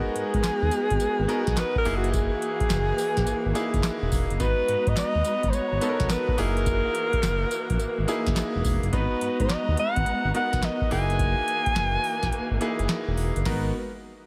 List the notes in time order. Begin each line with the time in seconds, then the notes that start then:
Already playing: G#3 B3 D#4 F#4 G#4 A#4
0.16 G#2, closed hi-hat
0.34 G#2, kick, closed hi-hat
0.44 snare, clap, closed hi-hat, tambourine
0.62 D#2
0.71 closed hi-hat, tambourine
0.90 G#1, kick, closed hi-hat
1.00 closed hi-hat, tambourine
1.19 G#1
1.28 B3 D#4 F#4 A#4, closed hi-hat, tambourine
1.47 B1, kick, snare, closed hi-hat
1.57 B4, snare, clap, closed hi-hat, tambourine
1.75 A#4, kick
1.85 F#1 E3 A#3 D#4 E4 G#4, open hi-hat, tambourine
1.97 F#4
2.04 closed hi-hat
2.11 G4, kick, closed hi-hat, tambourine
2.16 G#4
2.42 closed hi-hat
2.60 F#1, kick, closed hi-hat
2.70 F#1, snare, clap, closed hi-hat, tambourine
2.98 open hi-hat, tambourine
3.17 A#1, kick, snare, closed hi-hat
3.27 G#1, closed hi-hat, tambourine
3.46 G#1
3.55 A#3 D#4 E4 G#4, closed hi-hat, tambourine
3.74 F#1, kick, closed hi-hat
3.83 snare, clap, closed hi-hat, tambourine
4.02 E1
4.12 E1, kick, open hi-hat, tambourine
4.30 F#1, closed hi-hat
4.40 G#1 G#3 B3 D#4 F#4 B4 A#5, kick, closed hi-hat, tambourine
4.68 G#2, closed hi-hat
4.87 G#2 D#5, kick, closed hi-hat
4.97 D#5, snare, clap, closed hi-hat, tambourine
5.15 D#2
5.24 closed hi-hat, tambourine
5.43 G#1, kick, closed hi-hat
5.50 C5, closed hi-hat, tambourine
5.55 C#5
5.72 G#1
5.81 B3 D#4 F#4 A4, closed hi-hat, tambourine
5.89 A#4
6.00 B1, kick, snare, closed hi-hat
6.09 B4, snare, clap, closed hi-hat, tambourine
6.28 kick
6.38 F#1 E3 A#3 D#4 E4 G#4 A#4, open hi-hat, tambourine
6.57 closed hi-hat
6.66 kick, closed hi-hat, tambourine
6.95 closed hi-hat
7.13 F#1, kick, closed hi-hat
7.23 F#1, snare, clap, closed hi-hat, tambourine
7.51 closed hi-hat, tambourine
7.70 A#1, kick, closed hi-hat
7.79 G#1, closed hi-hat, tambourine
7.98 G#1
8.08 A#3 D#4 E4 G#4, closed hi-hat, tambourine
8.27 F#1, kick, snare, closed hi-hat
8.36 snare, clap, closed hi-hat, tambourine
8.55 E1
8.65 E1, kick, open hi-hat, tambourine
8.83 F#1, closed hi-hat
8.93 G#1 G#3 B3 D#4 F#4 B4 A#5, kick, closed hi-hat
9.21 G#2, closed hi-hat
9.40 G#2 D#5, kick, closed hi-hat
9.49 snare, clap, closed hi-hat
9.68 D#2
9.77 F#5, closed hi-hat
9.96 G#1, kick, closed hi-hat
10.06 closed hi-hat
10.25 G#1
10.34 B3 D#4 F#4 A#4 F#5, closed hi-hat
10.53 B1, kick, snare, closed hi-hat
10.63 D#5, snare, clap, closed hi-hat
10.81 kick
10.91 F#1 E3 A#3 D#4 E4 G#4 G#5, open hi-hat
11.10 closed hi-hat
11.19 kick, closed hi-hat
11.48 closed hi-hat
11.66 F#1, kick, closed hi-hat
11.76 F#1, snare, clap, closed hi-hat
12.04 open hi-hat
12.23 A#1, kick, snare, closed hi-hat
12.32 G#1, closed hi-hat
12.51 G#1
12.61 A#3 D#4 E4 G#4, closed hi-hat
12.79 F#1, closed hi-hat
12.89 snare, clap, closed hi-hat
13.08 E1
13.17 E1, open hi-hat
13.36 F#1, closed hi-hat
13.45 G#1 G#3 B3 D#4 F#4 A#4 B4, kick, snare, crash